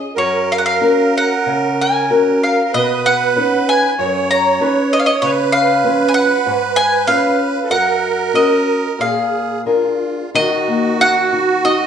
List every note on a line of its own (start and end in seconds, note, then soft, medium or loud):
0.15 0.79 F#2 medium
0.15 2.63 A#4 medium
0.15 0.51 C#5 medium
0.52 0.58 F5 medium
0.58 0.64 F#5 medium
0.66 1.16 F5 medium
0.81 1.33 C#4 soft
0.81 1.33 F#4 soft
0.81 1.33 A#4 soft
1.18 1.81 F#5 medium
1.46 2.08 C#3 medium
1.81 2.09 G#5 medium
2.10 2.60 C#4 soft
2.10 2.61 F#4 soft
2.10 2.61 A#4 medium
2.44 2.75 F5 medium
2.64 2.72 A#4 medium
2.72 3.34 B2 medium
2.72 3.94 B4 loud
2.72 3.06 D#5 medium
3.06 3.69 F#5 medium
3.36 3.86 C#4 soft
3.36 3.86 D#4 soft
3.36 3.87 B4 medium
3.69 4.30 G#5 medium
3.98 4.58 F#2 medium
3.98 5.25 C#5 loud
4.31 4.59 A#5 medium
4.60 5.09 C#4 medium
4.60 5.09 D#4 soft
4.60 5.10 B4 medium
4.93 4.99 D#5 medium
5.00 5.05 F5 medium
5.06 5.22 D#5 medium
5.22 5.82 C#3 medium
5.22 7.70 B4 loud
5.22 5.30 C#5 medium
5.52 6.08 F5 medium
5.84 6.33 F3 soft
5.84 6.33 C#4 soft
5.84 6.34 B4 soft
6.08 6.14 G#5 medium
6.14 6.76 F#5 medium
6.46 7.05 G#2 medium
6.76 7.07 G#5 loud
7.07 7.58 C#4 medium
7.07 7.58 F4 soft
7.07 7.58 B4 medium
7.07 7.71 F5 medium
7.64 7.70 A4 medium
7.70 8.32 F#2 medium
7.70 9.02 A#4 loud
7.70 8.36 F#5 medium
8.34 8.85 C#4 soft
8.34 8.85 F#4 soft
8.34 8.86 A#4 soft
8.34 8.95 D#5 medium
8.99 9.64 A#2 medium
8.99 9.62 G#4 medium
8.99 9.63 F5 medium
9.65 10.21 D4 soft
9.65 10.30 F4 medium
9.65 10.21 G#4 soft
9.65 10.21 A#4 medium
10.34 11.87 D#3 medium
10.34 11.87 F#4 medium
10.34 10.97 D#5 loud
10.68 10.99 A#3 soft
11.01 11.31 D#4 soft
11.01 11.67 F#5 loud
11.33 11.63 F#4 medium
11.65 11.87 D#4 medium
11.65 11.87 D#5 medium